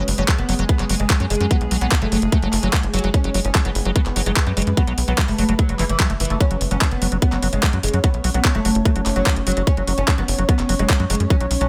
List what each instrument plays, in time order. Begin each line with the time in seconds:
Already playing: ambient pad G#3 G#4
0.08 analog synth bass F#1, open hi-hat
0.18 analog synth bass F#1, acid bass F#3, oud C#4, closed hi-hat
0.28 acid bass F#3, kick, clap
0.38 analog synth bass F#1, oud B3, closed hi-hat
0.49 analog synth bass F#1, acid bass F#3, open hi-hat
0.59 analog synth bass F#1, acid bass F#3, closed hi-hat
0.69 oud B3, kick, closed hi-hat
0.79 analog synth bass F#1, acid bass F#3, clap, closed hi-hat
0.90 analog synth bass F#1, acid bass F#3, open hi-hat
1.00 analog synth bass F#1, oud G#3, closed hi-hat
1.10 acid bass F#3, kick, clap, closed hi-hat
1.20 analog synth bass F#2, acid bass F#3, closed hi-hat
1.30 analog synth bass F#1, oud G#3, open hi-hat
1.35 closed hi-hat
1.41 analog synth bass F#2, acid bass F#3, closed hi-hat
1.51 acid bass F#3, oud B3, kick, closed hi-hat
1.61 analog synth bass B1, closed hi-hat
1.71 analog synth bass B1, acid bass F#3, open hi-hat
1.81 analog synth bass B1, acid bass F#3, oud B3, closed hi-hat
1.92 kick, clap
2.02 analog synth bass F#1, acid bass F#3, oud A3, closed hi-hat
2.12 analog synth bass F#1, acid bass F#3, open hi-hat
2.22 analog synth bass F#1, closed hi-hat
2.32 acid bass F#3, oud A3, kick, closed hi-hat
2.43 analog synth bass F#1, acid bass F#3, closed hi-hat
2.53 analog synth bass F#1, clap, open hi-hat
2.63 analog synth bass F#1, oud F#3, acid bass F#3, closed hi-hat
2.73 acid bass F#3, kick, clap, closed hi-hat
2.83 analog synth bass F#1, closed hi-hat
2.94 analog synth bass F#1, acid bass F#3, oud F#3, open hi-hat
2.99 closed hi-hat
3.04 analog synth bass F#1, acid bass F#3, closed hi-hat
3.14 oud C#4, ambient pad B4, kick, closed hi-hat
3.24 analog synth bass F#1, acid bass F#3, closed hi-hat
3.34 analog synth bass F#1, acid bass F#3, open hi-hat
3.45 analog synth bass F#1, oud C#4, closed hi-hat
3.55 acid bass F#3, kick, clap
3.65 analog synth bass F#1, acid bass F#3, oud B3, closed hi-hat
3.75 analog synth bass F#1, open hi-hat
3.85 analog synth bass F#1, acid bass F#3, closed hi-hat
3.96 acid bass F#3, oud B3, kick, closed hi-hat
4.06 analog synth bass F#1, clap, closed hi-hat
4.16 analog synth bass F#1, acid bass F#3, open hi-hat
4.26 analog synth bass F#1, acid bass F#3, oud G#3, closed hi-hat
4.36 kick, clap, closed hi-hat
4.47 analog synth bass F#2, acid bass F#3, closed hi-hat
4.57 analog synth bass F#1, acid bass F#3, oud G#3, open hi-hat
4.62 closed hi-hat
4.67 analog synth bass F#2, closed hi-hat
4.77 acid bass F#3, oud B3, kick, closed hi-hat
4.87 analog synth bass B1, acid bass F#3, closed hi-hat
4.98 analog synth bass B1, open hi-hat
5.08 analog synth bass B1, acid bass F#3, oud B3, closed hi-hat
5.18 acid bass F#3, kick, clap, closed hi-hat
5.28 analog synth bass F#1, oud A3, open hi-hat
5.38 analog synth bass F#1, acid bass F#3, open hi-hat
5.49 analog synth bass F#1, acid bass F#3, closed hi-hat
5.59 oud F#3, kick, closed hi-hat
5.69 analog synth bass F#1, acid bass F#3, closed hi-hat
5.79 analog synth bass F#1, acid bass E3, clap, open hi-hat
5.89 analog synth bass F#1, oud E3, closed hi-hat
6.00 acid bass F#3, kick, clap, closed hi-hat
6.10 analog synth bass F#1, acid bass A3, closed hi-hat
6.20 analog synth bass F#1, oud E3, open hi-hat
6.25 closed hi-hat
6.30 analog synth bass F#1, acid bass A3, closed hi-hat
6.40 acid bass F#3, ambient pad C#4 C#5, oud C#4, kick, closed hi-hat
6.51 analog synth bass F#1, acid bass F#3, closed hi-hat
6.61 analog synth bass F#1, open hi-hat
6.71 analog synth bass F#1, acid bass F#3, oud C#4, closed hi-hat
6.81 acid bass F#3, kick, clap
6.91 analog synth bass F#1, oud B3, closed hi-hat
7.02 analog synth bass F#1, acid bass F#3, open hi-hat
7.12 analog synth bass F#1, acid bass F#3, closed hi-hat
7.22 oud B3, kick, closed hi-hat
7.32 analog synth bass F#1, acid bass F#3, clap, closed hi-hat
7.43 analog synth bass F#1, acid bass F#3, open hi-hat
7.53 analog synth bass F#1, oud G#3, closed hi-hat
7.63 acid bass F#3, kick, clap, closed hi-hat
7.73 analog synth bass F#2, acid bass F#3, closed hi-hat
7.83 analog synth bass F#1, oud G#3, open hi-hat
7.88 closed hi-hat
7.94 analog synth bass F#2, acid bass F#3, closed hi-hat
8.04 acid bass F#3, oud B3, kick, closed hi-hat
8.14 analog synth bass B1, closed hi-hat
8.24 analog synth bass B1, acid bass F#3, open hi-hat
8.34 analog synth bass B1, acid bass F#3, oud B3, closed hi-hat
8.45 kick, clap
8.55 analog synth bass F#1, acid bass F#3, oud A3, closed hi-hat
8.65 analog synth bass F#1, acid bass F#3, open hi-hat
8.75 analog synth bass F#1, closed hi-hat
8.85 acid bass F#3, oud A3, kick, closed hi-hat
8.96 analog synth bass F#1, acid bass F#3, closed hi-hat
9.06 analog synth bass F#1, clap, open hi-hat
9.16 analog synth bass F#1, acid bass F#3, oud F#3, closed hi-hat
9.26 acid bass F#3, kick, clap, closed hi-hat
9.36 analog synth bass F#1, closed hi-hat
9.47 analog synth bass F#1, acid bass F#3, oud F#3, open hi-hat
9.52 closed hi-hat
9.57 analog synth bass F#1, acid bass F#3, closed hi-hat
9.67 oud C#4, kick, closed hi-hat
9.77 analog synth bass F#1, acid bass F#3, closed hi-hat
9.87 analog synth bass F#1, acid bass F#3, open hi-hat
9.98 analog synth bass F#1, oud C#4, closed hi-hat
10.08 acid bass F#3, kick, clap
10.18 analog synth bass F#1, acid bass F#3, oud B3, closed hi-hat
10.28 analog synth bass F#1, open hi-hat
10.38 analog synth bass F#1, acid bass F#3, closed hi-hat
10.49 acid bass F#3, oud B3, kick, closed hi-hat
10.59 analog synth bass F#1, clap, closed hi-hat
10.69 analog synth bass F#1, acid bass F#3, open hi-hat
10.79 analog synth bass F#1, acid bass F#3, oud G#3, closed hi-hat
10.90 kick, clap, closed hi-hat
11.00 analog synth bass F#2, acid bass F#3, closed hi-hat
11.10 analog synth bass F#1, acid bass F#3, oud G#3, open hi-hat
11.15 closed hi-hat
11.20 analog synth bass F#2, closed hi-hat
11.30 acid bass F#3, oud C#4, kick, closed hi-hat
11.41 analog synth bass B1, acid bass F#3, closed hi-hat
11.51 analog synth bass B1, open hi-hat
11.61 analog synth bass B1, acid bass F#3, oud C#4, closed hi-hat